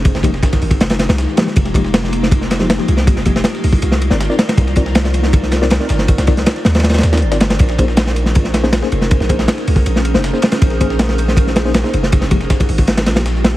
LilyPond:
<<
  \new Staff \with { instrumentName = "Tine electric piano" } { \time 4/4 \key bes \dorian \tempo 4 = 159 r8 <f aes bes ees' g'>16 r2 r8. <f aes bes ees' g'>16 r16 | r8 <f aes bes ees' g'>16 r2 <f aes bes ees' g'>16 r16 <f aes bes ees' g'>16 r8 | r8 <f aes bes ees' g'>16 r2 <c' ees' f' bes' d''>16 r16 <c' ees' f' bes' d''>16 r8 | r8 <c' ees' f' bes' d''>16 r2 <c' ees' f' bes' d''>16 r16 <c' ees' f' bes' d''>16 r8 |
r8 <c' ees' f' bes' d''>16 r2 <c' ees' f' bes' d''>16 r16 <c' ees' f' bes' d''>16 r8 | r8 <bes des' ees' aes' c''>16 r2 <bes des' ees' aes' c''>16 r16 <bes des' ees' aes' c''>16 r8 | r8 <bes des' ees' aes' c''>16 r2 <bes des' ees' aes' c''>16 r16 <bes des' ees' aes' c''>16 r8 | r8 <bes des' ees' aes' c''>16 r2 <bes des' ees' aes' c''>16 r16 <bes des' ees' aes' c''>16 r8 |
r8 <f aes bes ees' g'>16 r2 <f aes bes ees' g'>16 r4 | }
  \new Staff \with { instrumentName = "808-style bass" } { \clef bass \time 4/4 \key bes \dorian f,,16 f,,8. r8 aes,,8 f,,8. c,8 r8. | f,,2.~ f,,16 r16 c,8~ | c,16 f,,8. r8 c,8 c,8. g,,8 r8. | c,2.~ c,16 r16 g,,8~ |
g,,16 c,8. r8 ees,4 ees,8 g,,4 | bes,,2.~ bes,,16 r16 f,,8~ | f,,16 bes,,8. r8 des,8 bes,,8. f,,8 r8. | bes,,2.~ bes,,16 r16 f,,8~ |
f,,16 f,,8. r8 aes,,4 bes,,4. | }
  \new DrumStaff \with { instrumentName = "Drums" } \drummode { \time 4/4 <hh bd cymr>16 sn16 <hh bd cymr>16 <cymr sn>16 <hh bd cymr sn>16 <bd cymr sn>16 <hho cymr>16 <bd cymr>16 <hh cymr sn>16 <cymr sn>16 <hh cymr sn>16 <cymr sn>16 <hh sn>16 sn16 <hh cymr sn>16 sn16 | <hh bd cymr>16 <cymr sn>16 <hh bd cymr>16 sn16 <hh cymr sn>16 sn16 <hh cymr>16 sn16 <hh bd cymr>16 sn16 <hh cymr sn>16 sn16 <hh cymr sn>16 sn16 <hh cymr>16 sn16 | <hh bd cymr>16 sn16 <hh bd cymr>16 sn16 <hh cymr sn>16 <cymr sn>16 <hho cymr>16 bd16 <hh cymr>16 sn16 <hh cymr>16 sn16 <hh sn>16 sn16 <hh cymr sn>16 <cymr sn>16 | <hh bd cymr>16 <cymr sn>16 <hh bd cymr>16 sn16 <hh cymr sn>16 sn16 <hh cymr>16 sn16 <hh bd cymr>16 sn16 <hh cymr sn>16 sn16 <hh cymr sn>16 sn16 <hh cymr sn>16 sn16 |
<hh bd cymr>16 <hh sn>16 <bd cymr sn>16 <hh sn>16 <hh cymr sn>16 <cymr sn>16 <hh cymr sn>16 <cymr sn>32 <cymr sn>32 <hh cymr sn>32 <cymr sn>32 <cymr sn>32 <cymr sn>32 <hh cymr sn>16 <hh sn>32 <hh sn>32 hh16 <hh sn>16 <hh cymr sn>16 <cymr sn>16 | <hh bd cymr>16 <cymr sn>16 <hh bd cymr>16 sn16 <hh cymr sn>16 sn16 <hh cymr>16 sn16 <hh bd cymr>16 sn16 <hh cymr sn>16 sn16 <hh cymr sn>16 sn16 <hh cymr>16 sn16 | <hh bd cymr>16 sn16 <hh bd cymr>16 sn16 <hh cymr sn>16 <cymr sn>16 <hho cymr>16 bd16 <hh cymr>16 sn16 <hh cymr>16 sn16 <hh sn>16 sn16 <hh cymr sn>16 <cymr sn>16 | <hh bd cymr>16 <cymr sn>16 <hh bd cymr>16 sn16 <hh cymr sn>16 sn16 <hh cymr>16 sn16 <hh bd cymr>16 sn16 <hh cymr sn>16 sn16 <hh cymr sn>16 sn16 <hh cymr>16 sn16 |
<hh bd cymr>16 sn16 <hh bd cymr>16 <cymr sn>16 <hh bd cymr sn>16 <bd cymr sn>16 <hho cymr>16 <bd cymr>16 <hh cymr sn>16 <cymr sn>16 <hh cymr sn>16 <cymr sn>16 <hh sn>16 sn16 <hh cymr sn>8 | }
>>